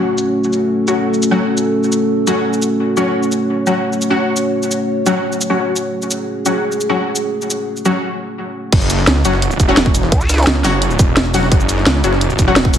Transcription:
0.00 0.85 F#3 medium
0.00 8.69 A3 medium
0.00 0.85 C#4 medium
0.00 8.69 C#4 medium
0.00 0.86 F#4 medium
0.00 8.69 F#4 medium
0.00 0.34 C#5 medium
0.18 cabasa medium
0.35 3.13 A4 medium
0.44 cabasa soft
0.53 cabasa medium
0.88 0.96 F#3 medium
0.88 0.96 C#4 medium
0.88 0.96 F#4 medium
0.88 cabasa medium
1.14 cabasa soft
1.22 cabasa medium
1.31 1.40 F#3 medium
1.31 1.40 C#4 medium
1.31 1.40 F#4 medium
1.57 cabasa medium
1.84 cabasa soft
1.92 cabasa medium
2.27 2.36 F#3 medium
2.27 2.36 C#4 medium
2.27 2.36 F#4 loud
2.27 cabasa medium
2.53 cabasa soft
2.62 cabasa medium
2.97 3.10 F#3 medium
2.97 3.10 C#4 medium
2.97 3.10 F#4 medium
2.97 cabasa medium
3.14 5.92 C#5 medium
3.23 cabasa soft
3.32 cabasa medium
3.67 3.75 F#3 medium
3.67 3.75 C#4 medium
3.67 3.75 F#4 medium
3.67 cabasa medium
3.93 cabasa soft
4.02 cabasa medium
4.10 4.19 F#3 medium
4.10 4.19 C#4 medium
4.10 4.19 F#4 medium
4.36 cabasa medium
4.63 cabasa soft
4.71 cabasa medium
5.06 5.15 F#3 medium
5.06 5.15 C#4 medium
5.06 5.15 F#4 loud
5.06 cabasa medium
5.32 cabasa soft
5.41 cabasa medium
5.50 6.44 F#3 medium
5.50 6.44 C#4 medium
5.50 6.44 F#4 medium
5.76 cabasa medium
5.93 8.71 G#4 medium
6.02 cabasa soft
6.11 cabasa medium
6.46 6.54 F#3 medium
6.46 6.54 C#4 medium
6.46 6.54 F#4 medium
6.46 cabasa medium
6.72 cabasa soft
6.81 cabasa medium
6.89 6.98 F#3 medium
6.89 6.98 C#4 medium
6.89 6.98 F#4 medium
7.16 cabasa medium
7.42 cabasa soft
7.51 cabasa medium
7.77 cabasa soft
7.85 7.94 F#3 medium
7.85 7.94 C#4 medium
7.85 7.94 F#4 loud
7.85 cabasa medium
8.72 9.06 F#1 loud
8.72 kick loud
8.72 closed hi-hat loud
8.72 closed hi-hat medium
8.72 crash loud
8.81 cabasa soft
8.90 closed hi-hat medium
8.90 cabasa medium
8.99 snare medium
9.07 9.23 C#2 loud
9.07 snare loud
9.07 closed hi-hat loud
9.07 closed hi-hat medium
9.16 snare medium
9.25 9.58 F#1 loud
9.25 9.33 F#3 medium
9.25 9.33 C#4 medium
9.25 9.33 F#4 medium
9.25 closed hi-hat medium
9.25 cabasa medium
9.33 snare medium
9.42 closed hi-hat medium
9.42 closed hi-hat loud
9.51 closed hi-hat soft
9.51 cabasa soft
9.60 10.11 E1 loud
9.60 kick medium
9.60 closed hi-hat medium
9.60 cabasa medium
9.68 9.77 F#3 medium
9.68 9.77 C#4 medium
9.68 9.77 F#4 loud
9.77 snare loud
9.77 closed hi-hat medium
9.77 closed hi-hat loud
9.86 kick loud
9.95 closed hi-hat medium
9.95 cabasa medium
10.03 snare medium
10.12 10.46 C#2 loud
10.12 kick loud
10.12 closed hi-hat medium
10.12 closed hi-hat loud
10.21 cabasa soft
10.29 snare medium
10.29 closed hi-hat medium
10.29 cabasa medium
10.34 snare medium
10.34 closed hi-hat medium
10.38 snare medium
10.38 closed hi-hat medium
10.43 snare medium
10.43 closed hi-hat medium
10.47 10.63 C#2 loud
10.47 snare loud
10.47 closed hi-hat medium
10.56 snare medium
10.64 10.98 F#1 loud
10.64 10.73 F#3 loud
10.64 10.73 C#4 medium
10.64 10.73 F#4 loud
10.64 snare soft
10.64 open hi-hat medium
10.64 cabasa medium
10.82 closed hi-hat medium
10.82 closed hi-hat loud
10.91 closed hi-hat soft
10.91 cabasa soft
10.99 11.50 E1 loud
10.99 kick loud
10.99 closed hi-hat medium
10.99 cabasa medium
11.17 snare loud
11.17 closed hi-hat loud
11.17 closed hi-hat medium
11.25 closed hi-hat soft
11.34 11.48 F#3 medium
11.34 11.48 C#4 medium
11.34 11.48 F#4 medium
11.34 closed hi-hat medium
11.34 open hi-hat medium
11.34 cabasa medium
11.43 snare soft
11.52 11.85 F#1 loud
11.52 kick loud
11.52 closed hi-hat loud
11.52 closed hi-hat medium
11.60 cabasa soft
11.69 closed hi-hat medium
11.69 cabasa medium
11.78 snare medium
11.86 12.03 C#2 loud
11.86 snare loud
11.86 closed hi-hat loud
11.86 closed hi-hat medium
11.95 snare medium
12.04 12.37 F#1 loud
12.04 12.12 F#3 medium
12.04 12.12 C#4 medium
12.04 12.12 F#4 medium
12.04 closed hi-hat medium
12.04 cabasa medium
12.13 snare medium
12.21 closed hi-hat loud
12.21 closed hi-hat medium
12.30 closed hi-hat soft
12.30 cabasa soft
12.39 12.78 E1 loud
12.39 kick medium
12.39 closed hi-hat medium
12.39 cabasa medium
12.48 12.56 F#3 medium
12.48 12.56 C#4 medium
12.48 12.56 F#4 loud
12.56 snare loud
12.56 closed hi-hat loud
12.56 closed hi-hat medium
12.65 kick loud
12.74 closed hi-hat medium
12.74 cabasa medium

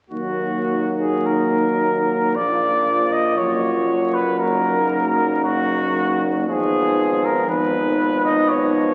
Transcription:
0.10 2.37 D#2 soft
0.10 2.36 F#3 soft
0.10 3.33 A#3 soft
0.10 2.31 D#4 soft
0.10 0.93 F#4 soft
0.98 1.27 G#4 soft
1.26 2.37 A#4 soft
2.34 3.38 A#1 soft
2.34 3.36 F3 soft
2.34 4.41 F4 soft
2.34 3.13 D5 medium
3.12 3.38 D#5 medium
3.37 6.45 F#1 soft
3.37 6.44 F#3 soft
3.37 6.31 A#3 soft
3.37 4.15 C#5 medium
4.14 4.38 B4 soft
4.39 6.48 D#4 soft
4.39 5.42 A#4 medium
5.43 6.20 F#4 medium
6.47 8.94 G#1 soft
6.47 7.44 F3 soft
6.47 7.45 B3 medium
6.47 7.32 D#4 soft
6.47 7.26 G#4 medium
7.25 7.48 A#4 medium
7.48 8.94 F3 soft
7.48 8.94 B3 soft
7.48 8.94 D#4 soft
7.48 8.23 B4 medium
8.25 8.51 D#5 medium
8.49 8.94 C#5 medium

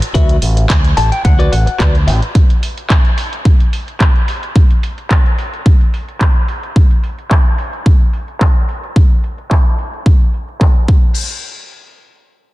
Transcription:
0.02 closed hi-hat soft
0.14 0.37 D2 medium
0.14 0.36 F#4 loud
0.14 0.36 B4 medium
0.14 0.36 E5 loud
0.14 kick loud
0.14 closed hi-hat medium
0.29 closed hi-hat soft
0.42 0.65 A1 loud
0.42 open hi-hat loud
0.57 muted clean electric guitar stroke soft
0.57 closed hi-hat soft
0.70 kick loud
0.70 clap loud
0.70 closed hi-hat medium
0.84 closed hi-hat soft
0.97 1.09 A1 medium
0.97 1.11 A5 medium
0.97 muted clean electric guitar stroke medium
0.97 open hi-hat loud
1.12 1.24 G5 medium
1.12 muted clean electric guitar stroke soft
1.12 closed hi-hat soft
1.25 1.47 D2 medium
1.25 1.50 F#5 medium
1.25 kick loud
1.25 closed hi-hat medium
1.39 1.52 F#4 medium
1.39 1.52 B4 medium
1.39 1.52 D5 loud
1.39 closed hi-hat soft
1.52 1.64 A1 medium
1.52 1.78 F#5 medium
1.52 open hi-hat loud
1.66 muted clean electric guitar stroke medium
1.66 closed hi-hat soft
1.79 2.09 D2 medium
1.79 1.94 F#4 medium
1.79 1.94 B4 medium
1.79 1.95 D5 medium
1.79 kick loud
1.79 clap loud
1.79 closed hi-hat medium
1.95 closed hi-hat soft
2.07 2.19 A1 medium
2.07 2.09 E5 medium
2.07 muted clean electric guitar stroke soft
2.07 open hi-hat loud
2.22 closed hi-hat soft
2.35 kick loud
2.35 closed hi-hat medium
2.50 closed hi-hat soft
2.63 open hi-hat loud
2.78 closed hi-hat soft
2.90 kick loud
2.90 clap loud
2.90 closed hi-hat medium
3.05 closed hi-hat soft
3.18 open hi-hat loud
3.33 closed hi-hat soft
3.45 kick loud
3.45 closed hi-hat medium
3.60 closed hi-hat soft
3.73 open hi-hat medium
3.88 closed hi-hat soft
4.00 kick medium
4.00 clap loud
4.00 closed hi-hat medium
4.16 closed hi-hat soft
4.28 open hi-hat loud
4.43 closed hi-hat soft
4.56 kick loud
4.56 closed hi-hat medium
4.71 closed hi-hat soft
4.83 open hi-hat loud
4.98 closed hi-hat soft
5.11 kick loud
5.11 clap loud
5.11 closed hi-hat medium
5.26 closed hi-hat soft
5.38 open hi-hat medium
5.54 closed hi-hat soft
5.66 kick loud
5.66 closed hi-hat medium
5.81 closed hi-hat soft
5.94 open hi-hat loud
6.08 closed hi-hat soft
6.21 kick medium
6.21 clap loud
6.21 closed hi-hat medium
6.36 closed hi-hat soft
6.48 open hi-hat medium
6.63 closed hi-hat soft
6.76 kick loud
6.76 closed hi-hat medium
6.91 closed hi-hat soft
7.04 open hi-hat loud
7.18 closed hi-hat soft
7.31 kick medium
7.31 clap loud
7.31 closed hi-hat medium
7.46 closed hi-hat soft
7.58 open hi-hat medium
7.73 closed hi-hat soft
7.86 kick loud
7.86 closed hi-hat medium
8.00 closed hi-hat soft
8.13 open hi-hat medium
8.28 closed hi-hat soft
8.41 kick medium
8.41 clap loud
8.56 closed hi-hat soft
8.69 open hi-hat medium
8.84 closed hi-hat soft
8.96 kick loud
8.96 closed hi-hat medium
9.11 closed hi-hat soft
9.24 open hi-hat medium
9.38 closed hi-hat soft
9.51 kick medium
9.51 clap loud
9.66 closed hi-hat soft
9.79 open hi-hat medium
9.93 closed hi-hat soft
10.06 kick loud
10.21 closed hi-hat soft
10.34 open hi-hat medium
10.48 closed hi-hat soft
10.61 kick medium
10.61 clap loud
10.76 closed hi-hat soft
10.88 kick loud
10.88 crash medium

